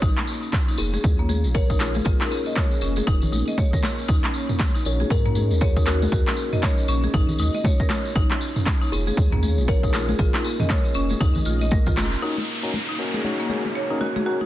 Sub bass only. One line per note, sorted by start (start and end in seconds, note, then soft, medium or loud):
0.02 0.13 A#1 loud
0.78 0.98 F1 medium
1.04 1.46 D#2 medium
1.44 2.01 A#1 medium
2.06 2.16 A#1 loud
2.82 3.01 F1 medium
3.07 3.27 F1 medium
3.32 3.43 A#1 medium
4.09 4.20 D#2 medium
4.85 5.05 A#1 medium
5.10 5.52 G#2 medium
5.51 6.07 D#2 loud
6.12 6.23 D#2 loud
6.88 7.08 A#1 medium
7.14 7.33 A#1 medium
7.39 7.50 D#2 medium
8.16 8.26 A#1 loud
8.92 9.11 F1 medium
9.17 9.59 D#2 medium
9.58 10.14 A#1 loud
10.19 10.30 A#1 loud
10.95 11.15 F1 medium
11.21 11.40 C#2 medium
11.46 11.98 A#1 medium
11.97 12.16 F1 loud